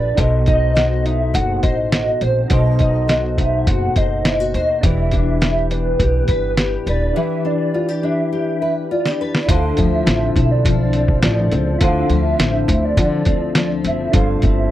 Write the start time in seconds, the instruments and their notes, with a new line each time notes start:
Already playing: upright bass A#1, nylon-string guitar G3 F4 G4 B4, synth keys D4 F4 A4 B4, soft synth lead D5
0.15 upright bass B1, nylon-string guitar B2, synth keys D#4 F#4 A4, soft synth lead D#5, kick, closed hi-hat
0.20 synth keys C5
0.46 nylon-string guitar D#4, soft synth lead D#5, kick, closed hi-hat
0.75 nylon-string guitar F#4, snare, closed hi-hat
1.05 nylon-string guitar D#4, soft synth lead E5, closed hi-hat
1.34 upright bass F#1, nylon-string guitar F#4, soft synth lead F#5, kick, closed hi-hat
1.63 upright bass A1, nylon-string guitar C5, soft synth lead D#5, kick, closed hi-hat
1.92 nylon-string guitar F#4, soft synth lead D#5, snare, closed hi-hat
2.21 upright bass A#1, nylon-string guitar C5, soft synth lead C5, closed hi-hat
2.48 upright bass B1, nylon-string guitar B2, synth keys D#4 F#4 A4, soft synth lead D#5, kick, closed hi-hat
2.53 synth keys C5
2.79 nylon-string guitar D#4, soft synth lead D#5, kick, closed hi-hat
3.08 nylon-string guitar F#4, snare, closed hi-hat
3.38 nylon-string guitar D#4, soft synth lead E5, kick, closed hi-hat
3.67 upright bass F#1, nylon-string guitar F#4, soft synth lead F#5, kick, closed hi-hat
3.96 upright bass F#1, nylon-string guitar C5, soft synth lead D#5, kick, closed hi-hat
4.25 nylon-string guitar E4, snare, closed hi-hat
4.40 nylon-string guitar F#4
4.54 upright bass D#2, nylon-string guitar C5, soft synth lead D#5, closed hi-hat
4.81 upright bass E1, nylon-string guitar E3, synth keys D4 E4 G4, soft synth lead E5, kick, closed hi-hat
4.86 synth keys B4
5.11 nylon-string guitar D4, soft synth lead E5, kick, closed hi-hat
5.41 nylon-string guitar G4, snare, closed hi-hat
5.70 nylon-string guitar D4, soft synth lead B4, closed hi-hat
6.00 upright bass B1, nylon-string guitar G4, kick, closed hi-hat
6.28 upright bass G1, nylon-string guitar B4, kick, closed hi-hat
6.57 nylon-string guitar G4, snare, closed hi-hat
6.86 upright bass D#1, nylon-string guitar B4, soft synth lead D5, closed hi-hat
7.13 nylon-string guitar E3, synth keys D4 E4 G4, soft synth lead E5
7.18 synth keys B4
7.45 nylon-string guitar D4, soft synth lead D5
7.74 nylon-string guitar F4
7.88 nylon-string guitar G4
8.03 nylon-string guitar D4, soft synth lead E5
8.33 nylon-string guitar G4
8.62 nylon-string guitar B4
8.91 nylon-string guitar F4, soft synth lead D5
9.06 nylon-string guitar G4, snare
9.21 nylon-string guitar B4
9.35 snare
9.46 upright bass D2, nylon-string guitar D3, synth keys E4 F4 A4, soft synth lead F5, kick, closed hi-hat
9.51 synth keys C5
9.77 upright bass D2, nylon-string guitar F3, soft synth lead E5, kick, closed hi-hat
10.06 upright bass A1, nylon-string guitar C4, snare, closed hi-hat
10.36 upright bass B1, nylon-string guitar E4, kick, closed hi-hat
10.51 soft synth lead D5
10.65 nylon-string guitar F3, soft synth lead D5, kick, closed hi-hat
10.93 nylon-string guitar C4, closed hi-hat
11.08 kick
11.22 upright bass A1, nylon-string guitar F3, soft synth lead D5, snare, closed hi-hat
11.52 upright bass C#2, nylon-string guitar C4, closed hi-hat
11.78 upright bass D2, nylon-string guitar D3, synth keys E4 F4 A4, soft synth lead F5, kick, closed hi-hat
11.84 synth keys C5
12.10 upright bass D2, nylon-string guitar F3, soft synth lead E5, closed hi-hat
12.39 upright bass A1, nylon-string guitar C4, snare, closed hi-hat
12.68 upright bass D2, nylon-string guitar E4, kick, closed hi-hat
12.85 soft synth lead D5
12.97 upright bass D3, nylon-string guitar F3, soft synth lead D5, kick, closed hi-hat
13.25 upright bass D2, nylon-string guitar C4, kick, closed hi-hat
13.55 nylon-string guitar F3, soft synth lead D5, snare, closed hi-hat
13.84 upright bass F#1, nylon-string guitar C4, soft synth lead E5, closed hi-hat
14.12 upright bass G1, nylon-string guitar G2, synth keys D4 F4 A4, soft synth lead F5, kick, closed hi-hat
14.17 synth keys C5
14.42 upright bass G1, nylon-string guitar C4, soft synth lead E5, kick, closed hi-hat